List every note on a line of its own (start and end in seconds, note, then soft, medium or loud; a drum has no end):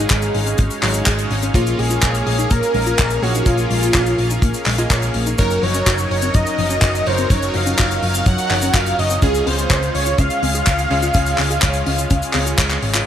0.00 0.80 G#3 medium
0.00 1.51 G#3 medium
0.00 5.34 C#4 medium
0.00 0.80 D#4 medium
0.00 1.51 D#4 medium
0.00 0.80 F#4 medium
0.00 0.59 G#4 loud
0.00 0.80 G#4 medium
0.00 0.80 C#5 loud
0.00 5.34 F5 medium
0.10 0.29 G#1 loud
0.10 0.16 G#4 loud
0.10 kick loud
0.10 clap loud
0.10 closed hi-hat loud
0.10 cabasa medium
0.22 closed hi-hat medium
0.22 cabasa medium
0.35 0.53 G#1 medium
0.35 0.44 G#3 medium
0.35 open hi-hat loud
0.47 0.52 C#4 medium
0.47 closed hi-hat medium
0.47 cabasa medium
0.58 0.68 G#1 medium
0.58 0.68 G#3 loud
0.58 kick loud
0.58 closed hi-hat loud
0.58 cabasa medium
0.70 closed hi-hat medium
0.70 cabasa soft
0.83 1.01 G#1 loud
0.83 0.92 F#3 medium
0.83 1.52 G#3 medium
0.83 1.52 D#4 medium
0.83 1.52 F#4 medium
0.83 1.52 G#4 medium
0.83 1.52 C#5 loud
0.83 clap medium
0.83 open hi-hat loud
0.94 1.06 D#4 loud
0.94 closed hi-hat medium
0.94 cabasa medium
1.06 1.25 G#1 medium
1.06 1.12 G#4 loud
1.06 kick loud
1.06 clap loud
1.06 closed hi-hat loud
1.06 cabasa medium
1.18 closed hi-hat medium
1.18 cabasa soft
1.30 1.49 G#1 loud
1.30 1.40 G#3 medium
1.30 open hi-hat loud
1.43 1.48 C#4 medium
1.43 closed hi-hat medium
1.43 cabasa medium
1.54 1.73 A#1 loud
1.54 5.35 A#3 medium
1.54 1.64 A#3 loud
1.54 3.20 A#3 loud
1.54 1.80 F4 loud
1.54 3.20 F4 medium
1.54 5.35 G#4 medium
1.54 3.20 G#4 medium
1.54 3.20 A#4 medium
1.54 3.20 C#5 loud
1.54 kick loud
1.54 closed hi-hat loud
1.54 cabasa medium
1.67 closed hi-hat medium
1.67 cabasa soft
1.79 1.97 A#1 medium
1.79 1.88 G#3 medium
1.79 2.26 G#4 loud
1.79 open hi-hat loud
1.90 2.02 F4 loud
1.90 closed hi-hat medium
1.90 cabasa medium
2.02 2.21 A#1 loud
2.02 2.08 A#4 loud
2.02 kick loud
2.02 clap loud
2.02 closed hi-hat loud
2.02 cabasa medium
2.14 closed hi-hat medium
2.14 cabasa soft
2.26 2.45 A#1 medium
2.26 2.36 A#3 medium
2.26 2.52 G#4 loud
2.26 open hi-hat loud
2.38 2.44 D#4 medium
2.38 closed hi-hat medium
2.38 cabasa medium
2.50 2.60 A#1 medium
2.50 2.60 A#3 loud
2.50 3.24 A#4 loud
2.50 kick loud
2.50 closed hi-hat loud
2.50 cabasa medium
2.63 closed hi-hat medium
2.63 cabasa soft
2.74 2.93 A#1 loud
2.74 2.84 G#3 medium
2.74 open hi-hat loud
2.86 2.98 F4 loud
2.86 closed hi-hat medium
2.86 cabasa medium
2.98 3.17 A#1 medium
2.98 3.04 A#4 loud
2.98 kick loud
2.98 clap loud
2.98 closed hi-hat loud
2.98 cabasa medium
3.10 closed hi-hat medium
3.10 cabasa soft
3.22 3.41 A#1 loud
3.22 3.44 A#3 medium
3.22 3.32 A#3 medium
3.22 3.44 F4 medium
3.22 3.48 F#4 loud
3.22 3.44 G#4 medium
3.22 3.44 A#4 medium
3.22 3.44 C#5 loud
3.22 open hi-hat loud
3.34 3.40 D#4 medium
3.34 closed hi-hat medium
3.34 cabasa medium
3.46 3.64 A#1 loud
3.46 3.56 A#3 loud
3.46 4.64 A#3 medium
3.46 4.42 F4 loud
3.46 4.64 F4 medium
3.46 4.64 G#4 medium
3.46 4.64 A#4 medium
3.46 4.64 C#5 medium
3.46 kick loud
3.46 closed hi-hat loud
3.46 cabasa medium
3.57 closed hi-hat medium
3.57 cabasa soft
3.70 3.89 A#1 medium
3.70 3.80 G#3 medium
3.70 open hi-hat loud
3.82 3.94 F4 loud
3.82 closed hi-hat medium
3.82 cabasa medium
3.94 4.13 A#1 loud
3.94 4.00 A#4 loud
3.94 kick loud
3.94 clap loud
3.94 closed hi-hat loud
3.94 cabasa medium
4.06 closed hi-hat medium
4.06 cabasa soft
4.18 4.37 A#1 medium
4.18 4.28 A#3 medium
4.18 open hi-hat loud
4.30 4.36 D#4 medium
4.30 closed hi-hat medium
4.30 cabasa medium
4.42 4.51 A#1 medium
4.42 4.52 A#3 loud
4.42 kick loud
4.42 closed hi-hat loud
4.42 cabasa medium
4.54 closed hi-hat medium
4.54 cabasa soft
4.66 4.85 A#1 loud
4.66 4.76 G#3 medium
4.66 clap medium
4.66 open hi-hat loud
4.78 4.88 A#3 medium
4.78 4.88 F4 medium
4.78 4.90 F4 loud
4.78 4.88 G#4 medium
4.78 4.88 A#4 medium
4.78 4.88 D#5 loud
4.78 closed hi-hat medium
4.78 cabasa medium
4.90 5.09 A#1 medium
4.90 5.36 A#3 medium
4.90 5.36 F4 medium
4.90 5.36 G#4 medium
4.90 4.96 A#4 loud
4.90 5.36 A#4 medium
4.90 5.36 C#5 medium
4.90 kick loud
4.90 clap loud
4.90 closed hi-hat loud
4.90 cabasa medium
5.02 closed hi-hat medium
5.02 cabasa soft
5.14 5.33 A#1 loud
5.14 5.24 A#3 medium
5.14 open hi-hat loud
5.26 5.32 D#4 medium
5.26 closed hi-hat medium
5.26 cabasa medium
5.38 5.57 F#1 loud
5.38 7.04 F#3 medium
5.38 5.48 F#3 loud
5.38 9.19 F#3 medium
5.38 13.03 C#4 medium
5.38 7.04 D#4 medium
5.38 9.19 D#4 medium
5.38 7.04 F#4 medium
5.38 7.04 A#4 medium
5.38 5.64 A#4 loud
5.38 9.19 A#4 medium
5.38 7.04 C#5 loud
5.38 kick loud
5.38 closed hi-hat loud
5.38 cabasa medium
5.50 closed hi-hat medium
5.50 cabasa medium
5.63 5.81 F#1 medium
5.63 5.72 F3 medium
5.63 6.10 C#5 loud
5.63 open hi-hat loud
5.74 5.86 C#4 loud
5.74 closed hi-hat medium
5.74 cabasa medium
5.86 6.05 F#1 loud
5.86 5.92 F#4 loud
5.86 kick loud
5.86 clap loud
5.86 closed hi-hat loud
5.86 cabasa medium
5.98 closed hi-hat medium
5.98 cabasa medium
6.10 6.29 F#1 medium
6.10 6.20 F#3 medium
6.10 6.36 C#5 loud
6.10 open hi-hat medium
6.22 6.28 C4 medium
6.22 closed hi-hat medium
6.22 cabasa medium
6.34 6.44 F#1 medium
6.34 6.44 F#3 loud
6.34 7.08 D#5 loud
6.34 kick loud
6.34 closed hi-hat medium
6.34 cabasa medium
6.47 closed hi-hat medium
6.47 cabasa soft
6.58 6.77 F#1 loud
6.58 6.68 F3 medium
6.58 open hi-hat loud
6.70 6.82 C#4 loud
6.70 closed hi-hat medium
6.70 cabasa medium
6.82 7.00 F#1 medium
6.82 6.88 F#4 loud
6.82 kick loud
6.82 clap loud
6.82 closed hi-hat medium
6.82 cabasa medium
6.95 closed hi-hat medium
6.95 cabasa medium
7.06 7.25 F#1 loud
7.06 7.28 F#3 medium
7.06 7.16 F#3 medium
7.06 7.28 D#4 medium
7.06 7.28 F#4 medium
7.06 7.28 A#4 medium
7.06 7.32 C5 loud
7.06 7.28 C#5 loud
7.06 open hi-hat loud
7.18 7.24 C4 medium
7.18 closed hi-hat medium
7.18 cabasa medium
7.30 7.49 F#1 loud
7.30 7.40 F#3 loud
7.30 8.48 F#3 medium
7.30 8.48 D#4 medium
7.30 8.48 F#4 medium
7.30 8.48 A#4 medium
7.30 8.48 C#5 medium
7.30 7.57 C#5 loud
7.30 kick loud
7.30 closed hi-hat loud
7.30 cabasa medium
7.42 closed hi-hat medium
7.42 cabasa soft
7.54 7.73 F#1 medium
7.54 7.64 F3 medium
7.54 8.03 F5 loud
7.54 open hi-hat loud
7.66 7.78 C#4 loud
7.66 closed hi-hat medium
7.66 cabasa medium
7.78 7.97 F#1 loud
7.78 7.84 F#4 loud
7.78 kick loud
7.78 clap loud
7.78 closed hi-hat medium
7.78 cabasa medium
7.91 closed hi-hat medium
7.91 cabasa medium
8.03 8.21 F#1 medium
8.03 8.12 F#3 medium
8.03 8.28 F5 loud
8.03 open hi-hat loud
8.14 8.20 C4 medium
8.14 closed hi-hat medium
8.14 cabasa medium
8.26 8.36 F#1 medium
8.26 8.36 F#3 loud
8.26 8.76 F#5 loud
8.26 kick loud
8.26 closed hi-hat medium
8.26 cabasa medium
8.38 closed hi-hat medium
8.38 cabasa soft
8.50 8.69 F#1 loud
8.50 8.60 F3 medium
8.50 9.20 F#3 medium
8.50 9.20 D#4 medium
8.50 9.20 F#4 medium
8.50 9.20 A#4 medium
8.50 9.20 C#5 loud
8.50 clap medium
8.50 open hi-hat loud
8.62 8.74 C#4 loud
8.62 closed hi-hat medium
8.62 cabasa medium
8.74 8.92 F#1 medium
8.74 8.80 F#4 loud
8.74 9.00 F5 loud
8.74 kick loud
8.74 clap loud
8.74 closed hi-hat loud
8.74 cabasa medium
8.86 closed hi-hat medium
8.86 cabasa medium
8.99 9.17 F#1 loud
8.99 9.08 F#3 medium
8.99 9.22 D#5 loud
8.99 open hi-hat loud
9.10 9.16 C4 medium
9.10 closed hi-hat medium
9.10 cabasa medium
9.22 9.41 C#2 loud
9.22 10.88 C#3 loud
9.22 13.03 G#3 medium
9.22 10.88 C#4 medium
9.22 9.32 C#4 loud
9.22 10.88 F4 medium
9.22 13.03 F4 medium
9.22 10.88 G#4 medium
9.22 9.48 G#4 loud
9.22 10.88 F5 loud
9.22 kick loud
9.22 closed hi-hat loud
9.22 cabasa medium
9.35 closed hi-hat medium
9.35 cabasa soft
9.47 9.65 C#2 medium
9.47 9.56 C4 medium
9.47 9.94 C5 loud
9.47 open hi-hat loud
9.58 9.70 G#4 loud
9.58 closed hi-hat medium
9.58 cabasa medium
9.70 9.89 C#2 loud
9.70 9.76 C#5 loud
9.70 kick loud
9.70 clap loud
9.70 closed hi-hat medium
9.70 cabasa medium
9.83 closed hi-hat medium
9.83 cabasa medium
9.94 10.13 C#2 medium
9.94 10.04 C#4 medium
9.94 10.20 C#5 loud
9.94 open hi-hat loud
10.06 10.12 F4 medium
10.06 closed hi-hat medium
10.06 cabasa medium
10.18 10.28 C#2 medium
10.18 10.28 C#4 loud
10.18 12.59 F5 loud
10.18 kick loud
10.18 closed hi-hat loud
10.18 cabasa medium
10.30 closed hi-hat medium
10.30 cabasa medium
10.43 10.61 C#2 loud
10.43 10.52 C4 medium
10.43 open hi-hat loud
10.55 10.66 G#4 loud
10.55 closed hi-hat medium
10.55 cabasa medium
10.67 10.85 C#2 medium
10.67 10.72 C#5 loud
10.67 kick loud
10.67 clap loud
10.67 closed hi-hat loud
10.67 cabasa medium
10.78 closed hi-hat medium
10.78 cabasa soft
10.91 11.09 C#2 loud
10.91 11.12 C#3 medium
10.91 11.12 C#4 medium
10.91 11.00 C#4 medium
10.91 11.12 F4 medium
10.91 11.12 G#4 medium
10.91 11.12 C#5 loud
10.91 open hi-hat medium
11.02 11.08 F4 medium
11.02 closed hi-hat medium
11.02 cabasa medium
11.14 11.33 C#2 loud
11.14 12.32 C#3 medium
11.14 11.24 C#4 loud
11.14 12.32 C#4 medium
11.14 12.32 F4 medium
11.14 12.32 G#4 medium
11.14 12.32 C#5 loud
11.14 kick loud
11.14 closed hi-hat loud
11.14 cabasa medium
11.26 closed hi-hat medium
11.26 cabasa medium
11.38 11.57 C#2 medium
11.38 11.48 C4 medium
11.38 clap medium
11.38 open hi-hat loud
11.50 11.62 G#4 loud
11.50 closed hi-hat medium
11.50 cabasa medium
11.62 11.81 C#2 loud
11.62 11.68 C#5 loud
11.62 kick loud
11.62 clap loud
11.62 closed hi-hat loud
11.62 cabasa medium
11.73 closed hi-hat medium
11.73 cabasa soft
11.86 12.05 C#2 medium
11.86 11.96 C#4 medium
11.86 open hi-hat loud
11.98 12.04 F4 medium
11.98 closed hi-hat medium
11.98 cabasa medium
12.10 12.20 C#2 medium
12.10 12.20 C#4 loud
12.10 kick loud
12.10 closed hi-hat loud
12.10 cabasa medium
12.22 closed hi-hat medium
12.22 cabasa soft
12.33 12.53 C#2 medium
12.33 13.04 C#3 medium
12.33 12.44 C4 medium
12.33 13.04 C#4 medium
12.33 13.04 F4 medium
12.33 13.04 G#4 medium
12.33 13.04 C#5 loud
12.33 clap medium
12.33 open hi-hat loud
12.46 12.58 G#4 loud
12.46 closed hi-hat medium
12.46 cabasa medium
12.58 12.77 C#2 medium
12.58 12.64 C#5 loud
12.58 kick loud
12.58 clap loud
12.58 closed hi-hat loud
12.58 cabasa medium
12.70 clap medium
12.70 closed hi-hat medium
12.70 cabasa soft
12.82 13.01 G#1 medium
12.82 12.92 C#4 medium
12.82 open hi-hat loud
12.94 13.00 F4 medium
12.94 clap loud
12.94 closed hi-hat medium
12.94 cabasa medium